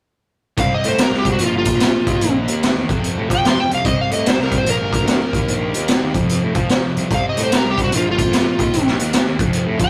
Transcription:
0.57 0.70 C2 medium
0.57 1.39 C3 medium
0.57 1.39 G3 medium
0.57 1.40 C4 medium
0.57 0.72 F5 medium
0.57 kick medium
0.57 closed hi-hat medium
0.74 0.86 D#5 medium
0.84 0.98 A2 medium
0.84 closed hi-hat medium
0.89 1.00 C5 medium
0.98 snare loud
0.98 closed hi-hat medium
1.03 1.15 A#4 medium
1.12 1.37 C2 medium
1.12 snare soft
1.19 1.29 G4 medium
1.25 kick medium
1.25 closed hi-hat medium
1.32 1.43 F#4 medium
1.39 1.52 A#1 loud
1.39 2.06 A#2 medium
1.39 2.06 F3 medium
1.39 2.07 A#3 loud
1.39 closed hi-hat medium
1.46 1.56 F4 medium
1.53 1.65 G1 medium
1.58 2.35 F4 loud
1.65 kick medium
1.65 closed hi-hat medium
1.74 1.93 A#1 medium
1.80 snare medium
1.80 closed hi-hat medium
2.07 2.14 D#2 medium
2.07 2.87 D#3 medium
2.07 2.88 A#3 medium
2.07 2.88 D#4 medium
2.07 kick medium
2.07 closed hi-hat medium
2.21 2.46 A#1 loud
2.21 closed hi-hat medium
2.48 2.61 D#2 medium
2.48 closed hi-hat soft
2.63 snare loud
2.63 closed hi-hat medium
2.76 2.88 E2 medium
2.88 3.69 F2 medium
2.88 3.14 F2 medium
2.88 3.69 C3 medium
2.88 3.69 F3 loud
2.88 kick medium
2.88 closed hi-hat soft
3.04 closed hi-hat medium
3.18 3.29 A2 medium
3.30 3.43 F3 medium
3.30 kick medium
3.30 closed hi-hat medium
3.35 3.46 G5 medium
3.45 3.57 F3 medium
3.45 3.59 C6 medium
3.45 snare loud
3.45 closed hi-hat medium
3.60 3.72 G5 medium
3.70 3.78 C2 medium
3.70 3.85 F2 medium
3.70 3.82 C3 medium
3.70 3.84 F3 medium
3.70 closed hi-hat medium
3.75 3.86 F5 medium
3.83 3.97 C2 loud
3.83 4.64 C3 medium
3.83 4.65 G3 medium
3.83 4.66 C4 medium
3.83 3.98 D#5 medium
3.83 kick loud
3.83 closed hi-hat medium
4.01 4.13 F5 medium
4.10 4.24 A2 medium
4.10 4.26 D#5 medium
4.10 closed hi-hat soft
4.26 4.41 C5 medium
4.26 snare loud
4.26 closed hi-hat medium
4.39 4.64 C2 medium
4.39 snare soft
4.44 4.55 A#4 medium
4.52 kick medium
4.52 closed hi-hat medium
4.58 4.69 C5 medium
4.64 4.78 A#1 loud
4.64 5.31 A#2 medium
4.64 5.32 F3 medium
4.64 5.32 A#3 loud
4.64 closed hi-hat medium
4.70 5.87 A#4 medium
4.79 4.92 G1 medium
4.93 kick medium
4.93 closed hi-hat medium
5.00 5.18 D2 medium
5.07 snare loud
5.07 closed hi-hat medium
5.33 5.40 D#2 medium
5.33 6.13 D#3 medium
5.33 6.13 A#3 medium
5.33 6.14 D#4 medium
5.33 kick medium
5.33 closed hi-hat medium
5.48 5.72 A#1 loud
5.48 closed hi-hat medium
5.74 5.88 D#2 medium
5.74 closed hi-hat medium
5.88 snare loud
5.88 closed hi-hat medium
6.03 6.14 D#2 medium
6.14 6.40 F2 medium
6.14 6.95 F2 medium
6.14 6.95 C3 medium
6.14 6.96 F3 medium
6.14 kick medium
6.14 closed hi-hat medium
6.29 closed hi-hat medium
6.43 6.54 A2 medium
6.55 6.68 F3 medium
6.55 kick medium
6.55 closed hi-hat soft
6.69 6.82 F3 medium
6.69 snare medium
6.69 closed hi-hat medium
6.97 7.03 C2 medium
6.97 7.11 F2 medium
6.97 7.09 C3 medium
6.97 7.10 F3 medium
6.97 closed hi-hat soft
7.10 7.23 C2 medium
7.10 7.91 C3 medium
7.10 7.92 G3 medium
7.10 7.92 C4 medium
7.10 kick medium
7.10 closed hi-hat medium
7.14 7.26 F5 medium
7.29 7.40 D#5 medium
7.37 7.50 A2 medium
7.37 closed hi-hat medium
7.43 7.54 C5 medium
7.52 snare loud
7.52 closed hi-hat medium
7.57 7.67 A#4 medium
7.65 7.89 C2 medium
7.70 7.81 G4 medium
7.78 kick medium
7.78 closed hi-hat medium
7.84 7.94 F#4 medium
7.92 8.05 A#1 loud
7.92 8.57 A#2 medium
7.92 8.58 F3 loud
7.92 8.59 A#3 medium
7.92 closed hi-hat medium
7.97 8.08 F4 medium
8.07 8.18 G1 medium
8.11 8.87 F4 loud
8.18 kick medium
8.18 closed hi-hat medium
8.26 8.44 F2 medium
8.33 snare loud
8.33 closed hi-hat medium
8.59 8.65 D#2 medium
8.59 9.39 D#3 medium
8.59 9.40 A#3 medium
8.59 kick medium
8.59 closed hi-hat medium
8.63 9.40 D#4 medium
8.73 8.97 A#1 loud
8.73 closed hi-hat medium
8.87 snare soft
8.99 9.12 D#2 medium
8.99 closed hi-hat medium
9.13 snare loud
9.13 closed hi-hat medium
9.26 9.38 D#2 medium
9.39 9.64 F2 medium
9.39 9.90 F2 medium
9.39 9.90 C3 medium
9.39 9.90 F3 medium
9.39 kick loud
9.39 closed hi-hat medium
9.53 closed hi-hat medium
9.66 9.78 A2 medium
9.79 9.90 F3 medium
9.79 kick medium
9.79 closed hi-hat medium
9.84 9.90 G5 medium

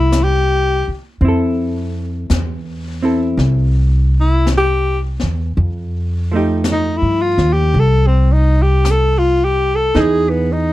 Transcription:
0.00 0.84 C2 medium
0.00 1.21 A#3 soft
0.00 0.25 E4 medium
0.00 1.22 E4 medium
0.00 1.22 A4 medium
0.12 brush sweep soft
0.12 snare soft
0.12 hi-hat pedal medium
0.24 0.93 G4 medium
0.88 muted upright bass stroke soft
1.21 2.25 F2 medium
1.21 3.01 C4 soft
1.21 brush sweep soft
1.25 3.02 E4 soft
1.25 3.04 A4 medium
2.30 3.34 E2 medium
2.30 brush sweep soft
2.30 snare soft
2.30 hi-hat pedal soft
3.03 5.56 C4 soft
3.03 5.56 E4 soft
3.03 5.57 A4 soft
3.37 5.17 C2 medium
3.37 brush sweep soft
3.37 snare soft
4.20 4.48 E4 medium
4.47 brush sweep soft
4.47 snare soft
4.47 hi-hat pedal soft
4.57 4.99 G4 medium
5.20 5.54 E2 medium
5.20 snare soft
5.55 6.97 F2 medium
5.55 brush sweep soft
6.32 9.94 F3 soft
6.32 9.95 A3 soft
6.32 9.95 D#4 soft
6.37 9.96 G4 soft
6.64 brush sweep soft
6.64 snare soft
6.64 hi-hat pedal medium
6.72 6.99 D#4 medium
6.97 7.23 E4 medium
7.02 7.35 G2 medium
7.21 7.54 F4 medium
7.38 7.71 D#2 medium
7.38 snare soft
7.53 7.81 G4 medium
7.74 9.89 C2 medium
7.74 brush sweep soft
7.79 8.08 A4 medium
8.07 8.33 C4 medium
8.32 8.64 D#4 medium
8.62 8.92 G4 medium
8.85 brush sweep soft
8.85 snare soft
8.85 hi-hat pedal medium
8.91 9.20 A4 medium
9.18 9.46 F4 medium
9.44 9.76 G4 medium
9.75 10.02 A4 medium
9.95 10.73 E2 medium
9.95 10.73 E3 soft
9.95 10.73 D#4 medium
9.95 10.73 G#4 medium
9.95 brush sweep soft
9.95 snare soft
10.00 10.31 G#4 medium
10.29 10.54 B3 medium
10.52 10.73 D#4 medium

